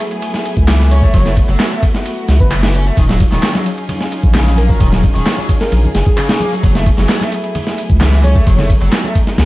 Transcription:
Already playing: string section F#3 A3 B3 E4 G#4
0.11 ride, shaker
0.22 ride, shaker
0.34 snare, shaker
0.45 ride, shaker
0.57 sub bass C#2, kick, shaker
0.68 overdriven electric guitar E3, snare, clap, ride, shaker
0.80 snare, shaker
0.91 overdriven electric guitar C#4, digital synth lead C#5, ride, shaker
1.02 overdriven electric guitar A3, digital synth lead C#5, kick, shaker
1.14 sub bass F#1, overdriven electric guitar F#3, string section F#4, digital synth lead C#5, kick, ride, shaker
1.26 overdriven electric guitar A3, snare, shaker
1.37 kick, ride, shaker
1.48 sub bass F#1, overdriven electric guitar F#3, ride, shaker
1.60 snare, clap, ride, shaker
1.72 overdriven electric guitar A3, shaker
1.83 kick, ride, shaker
1.95 snare, shaker
2.06 ride, shaker
2.17 shaker
2.28 sub bass C#2, snare, ride, shaker
2.40 sub bass F#1, digital synth lead B4, kick, shaker
2.50 overdriven electric guitar E3, digital synth lead B4, clap, ride, shaker
2.63 snare, shaker
2.74 overdriven electric guitar C#4, ride, shaker
2.86 overdriven electric guitar A3, shaker
2.97 sub bass D#1, overdriven electric guitar D#3, string section C#4 D#4 F4 G#4, kick, ride, shaker
3.09 overdriven electric guitar F#3, snare, high conga, shaker
3.20 kick, ride, shaker
3.32 sub bass D#1, overdriven electric guitar D#3, snare, shaker
3.43 snare, clap, ride, shaker
3.54 overdriven electric guitar F#3, snare, high conga, shaker
3.66 ride, shaker
3.78 ride, shaker
3.89 ride, high conga, low conga, shaker
4.00 snare, shaker
4.12 ride, shaker
4.23 sub bass A#1, kick, high conga, shaker
4.34 overdriven electric guitar C#3, snare, clap, ride, low conga, shaker
4.46 snare, shaker
4.56 overdriven electric guitar A#3, digital synth lead A#4, ride, high conga, shaker
4.69 overdriven electric guitar F#3, digital synth lead A#4, kick, shaker
4.80 sub bass D#1, overdriven electric guitar D#3, kick, ride, shaker
4.92 overdriven electric guitar F#3, snare, high conga, low conga, shaker
5.03 kick, ride, low conga, shaker
5.15 sub bass D#1, overdriven electric guitar D#3, ride, shaker
5.26 snare, clap, ride, shaker
5.38 overdriven electric guitar F#3, high conga, shaker
5.49 kick, ride, shaker
5.60 digital synth lead A#4, snare, shaker
5.72 sub bass A#1, ride, high conga, shaker
5.84 low conga, shaker
5.94 sub bass F#1, digital synth lead G#4, snare, ride, shaker
6.06 kick, high conga, shaker
6.17 overdriven electric guitar C#3, clap, ride, shaker
6.29 snare, shaker
6.40 overdriven electric guitar A#3, ride, high conga, shaker
6.52 overdriven electric guitar F#3, shaker
6.62 sub bass F#1, string section F#3 A3 B3 E4, overdriven electric guitar F#3, kick, ride, shaker
6.75 overdriven electric guitar A3, snare, high conga, shaker
6.86 kick, ride, shaker
6.98 sub bass F#1, overdriven electric guitar F#3, snare, shaker
7.09 snare, clap, ride, shaker
7.21 overdriven electric guitar A3, snare, high conga, shaker
7.32 ride, shaker
7.44 ride, shaker
7.55 ride, high conga, low conga, shaker
7.67 snare, shaker
7.78 ride, shaker
7.90 sub bass C#2, kick, high conga, shaker
8.01 overdriven electric guitar E3, snare, clap, ride, low conga, shaker
8.12 snare, shaker
8.24 overdriven electric guitar C#4, digital synth lead C#5, ride, high conga, shaker
8.35 overdriven electric guitar A3, digital synth lead C#5, kick, shaker
8.46 sub bass F#1, overdriven electric guitar F#3, string section D#4, digital synth lead C#5, kick, ride, shaker
8.57 overdriven electric guitar A3, snare, high conga, low conga, shaker
8.69 kick, ride, low conga, shaker
8.81 sub bass F#1, overdriven electric guitar F#3, ride, shaker
8.92 snare, clap, ride, shaker
9.04 overdriven electric guitar A3, high conga, shaker
9.15 kick, ride, shaker
9.27 snare, shaker
9.38 sub bass C#2, snare, ride, high conga, shaker

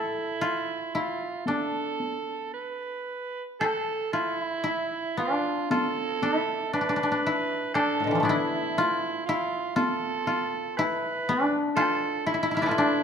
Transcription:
Already playing: koto A2 A4, soprano saxophone E4
0.41 koto F4
0.95 koto E4, soprano saxophone F4
1.46 koto D4, soprano saxophone A4, taiko high
2.00 taiko high
2.54 soprano saxophone B4
3.60 soprano saxophone A4, koto A4, taiko rim
4.13 soprano saxophone E4, koto F4
4.42 koto E4
4.64 koto E4
5.17 koto D4, soprano saxophone F4
5.71 koto F4, soprano saxophone A4, taiko high
6.22 koto E4, taiko high
6.73 koto D4, soprano saxophone B4
6.81 koto D4
6.89 koto D4
6.96 koto D4
7.03 koto D4
7.12 koto D4
7.26 koto E4
7.74 koto D4, soprano saxophone A4, taiko rim
8.00 koto A2
8.04 koto B2 D3
8.11 koto E3
8.15 koto F3
8.20 koto A3 B3
8.24 koto D4, soprano saxophone E4
8.29 koto E4
8.78 koto F4
9.26 koto E4, soprano saxophone F4
9.76 koto F4, soprano saxophone A4, taiko high
10.27 koto F4, taiko high
10.77 koto E4, soprano saxophone B4, taiko rim
11.29 koto D4
11.76 koto F4, soprano saxophone A4, taiko rim
12.26 koto E4, soprano saxophone E4
12.34 koto E4
12.43 koto E4
12.51 koto E4 F5
12.57 koto E4 E5
12.61 koto E4 B4 D5
12.66 koto F4 A4
12.71 koto E4
12.78 koto D4

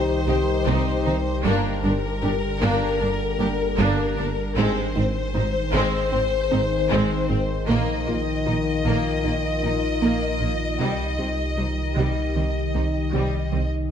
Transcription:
Already playing: sub bass C2, synth arpeggio sound D#3, french horn section D#3 G4, synth drone G3 D#4 G4 C5, violin section C5
0.28 double bass section C2, cello section C3, synth arpeggio sound D#3, viola section D#4, violin section G4
0.66 double bass section C2, synth arpeggio sound C3, cello section C3, violin section C4, viola section D#4
1.05 double bass section C2, cello section C3, synth arpeggio sound D#3, violin section D#4, viola section D#4
1.44 double bass section G1, sub bass G1, cello section G2, french horn section D3 A#4, synth arpeggio sound G3, violin section A#3 A#4, viola section D4, synth drone D4 A#4
1.83 double bass section G1, cello section G2, viola section D4, violin section D4, synth arpeggio sound D4
2.21 double bass section G1, cello section G2, viola section D4, synth arpeggio sound D4, violin section G4
2.61 double bass section G1, cello section G2, synth arpeggio sound G3, violin section A#3, viola section D4
2.99 double bass section G1, cello section G2, synth arpeggio sound A#3, violin section D4, viola section D4
3.39 double bass section G1, cello section G2, synth arpeggio sound A#3, viola section D4, violin section G4
3.78 double bass section G1, cello section G2, synth arpeggio sound G3, violin section A#3, viola section D4
4.17 double bass section G1, cello section G2, synth arpeggio sound A#3, viola section D4, violin section D4
4.56 sub bass G#1, double bass section G#1, cello section G#2, french horn section D#3 C5, synth drone D#3 D#4 G#4 C5, violin section G#3 C5, synth arpeggio sound G#3, viola section C4
4.96 double bass section G#1, cello section G#2, viola section C4, violin section C4, synth arpeggio sound D#4
5.34 double bass section G#1, cello section G#2, viola section C4, synth arpeggio sound D#4, violin section D#4
5.73 double bass section G#1, cello section G#2, violin section G#3, synth arpeggio sound G#3, viola section C4
6.11 double bass section G#1, cello section G#2, viola section C4, synth arpeggio sound C4, violin section C4
6.50 double bass section G#1, cello section G#2, viola section C4, synth arpeggio sound C4, violin section D#4
6.90 double bass section G#1, cello section G#2, violin section G#3, synth arpeggio sound G#3, viola section C4
7.29 double bass section G#1, cello section G#2, viola section C4, synth arpeggio sound C4, violin section C4
7.67 sub bass A#1, double bass section A#1, cello section A#2, viola section A#3, violin section A#3 D#5, synth arpeggio sound A#3, synth drone F4 D#5, french horn section A#4
8.07 double bass section A#1, cello section A#2, violin section A#3, viola section A#3, synth arpeggio sound F4
8.46 double bass section A#1, cello section A#2, viola section A#3, violin section D#4, synth arpeggio sound F4
8.85 double bass section A#1, cello section A#2, synth arpeggio sound A#3, viola section A#3, violin section A#3
9.24 double bass section A#1, cello section A#2, violin section A#3, viola section A#3, synth arpeggio sound D#4
9.63 double bass section A#1, cello section A#2, viola section A#3, synth arpeggio sound D#4, violin section D#4
10.02 double bass section A#1, cello section A#2, viola section A#3, synth arpeggio sound A#3, violin section A#3
10.41 double bass section A#1, cello section A#2, violin section A#3, viola section A#3, synth arpeggio sound D#4
10.79 double bass section C2, sub bass C2, synth arpeggio sound C3, cello section C3, synth drone D#3 D#4 G4, french horn section D#3 G4, violin section G3, viola section G3
11.19 double bass section C2, cello section C3, synth arpeggio sound G3, viola section G3, violin section C4
11.58 double bass section C2, cello section C3, viola section G3, synth arpeggio sound G3, violin section D#4
11.96 double bass section C2, synth arpeggio sound C3, cello section C3, violin section G3, viola section G3
12.35 double bass section C2, cello section C3, synth arpeggio sound D#3, viola section G3, violin section C4
12.74 double bass section C2, cello section C3, synth arpeggio sound D#3, viola section G3, violin section D#4
13.12 double bass section C2, cello section C3, synth arpeggio sound C3, viola section G3, violin section G3
13.51 double bass section C2, cello section C3, synth arpeggio sound D#3, viola section G3, violin section C4

